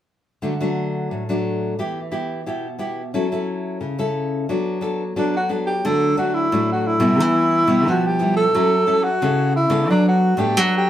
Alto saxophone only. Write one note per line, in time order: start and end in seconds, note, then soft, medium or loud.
5.18 5.33 D4 medium
5.37 5.51 F#4 medium
5.67 5.88 G4 medium
5.87 6.18 A4 medium
6.19 6.36 F#4 medium
6.34 6.69 E4 medium
6.72 6.88 F#4 medium
6.87 7.88 E4 medium
7.90 8.08 F#4 medium
8.07 8.36 G4 medium
8.37 9.05 A4 medium
9.04 9.55 F#4 medium
9.56 9.87 E4 medium
9.90 10.06 D4 medium
10.08 10.41 F#4 medium
10.39 10.61 G4 medium
10.59 10.75 F#4 medium
10.77 10.90 G4 medium